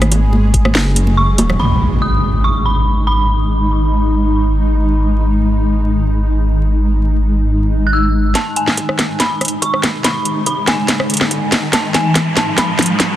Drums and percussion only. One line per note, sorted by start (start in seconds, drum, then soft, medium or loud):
0.01 cross-stick medium
0.01 closed hi-hat soft
0.01 high conga loud
0.12 closed hi-hat medium
0.12 high bongo medium
0.33 high conga medium
0.54 kick medium
0.54 closed hi-hat medium
0.65 cross-stick medium
0.65 high conga medium
0.75 snare loud
0.96 closed hi-hat medium
0.96 high bongo soft
1.07 high conga medium
1.38 closed hi-hat medium
1.38 high bongo medium
1.38 high conga medium
1.49 cross-stick medium
1.49 high bongo soft
1.49 low conga medium
8.35 kick loud
8.35 snare soft
8.35 closed hi-hat medium
8.56 closed hi-hat soft
8.68 snare soft
8.77 kick medium
8.77 closed hi-hat medium
8.89 cross-stick medium
8.99 snare soft
8.99 closed hi-hat medium
9.20 kick medium
9.20 snare soft
9.20 closed hi-hat medium
9.41 cross-stick medium
9.41 closed hi-hat soft
9.45 closed hi-hat medium
9.48 closed hi-hat medium
9.62 kick medium
9.62 closed hi-hat medium
9.74 cross-stick medium
9.83 snare medium
9.83 closed hi-hat medium
10.04 kick loud
10.04 snare medium
10.04 closed hi-hat medium
10.25 closed hi-hat medium
10.46 kick medium
10.46 closed hi-hat medium
10.68 snare medium
10.68 closed hi-hat medium
10.88 kick loud
10.88 snare medium
10.88 closed hi-hat medium
11.00 cross-stick medium
11.10 closed hi-hat soft
11.14 closed hi-hat medium
11.17 closed hi-hat medium
11.21 cross-stick medium
11.21 snare medium
11.31 kick medium
11.31 closed hi-hat medium
11.52 snare medium
11.52 closed hi-hat medium
11.73 kick loud
11.73 snare medium
11.73 closed hi-hat medium
11.94 snare medium
11.94 closed hi-hat medium
12.15 kick medium
12.15 snare medium
12.15 closed hi-hat medium
12.37 snare medium
12.37 closed hi-hat medium
12.58 kick loud
12.58 snare medium
12.58 closed hi-hat medium
12.79 snare medium
12.79 closed hi-hat soft
12.82 closed hi-hat medium
12.86 closed hi-hat medium
13.00 kick medium
13.00 snare medium
13.00 closed hi-hat medium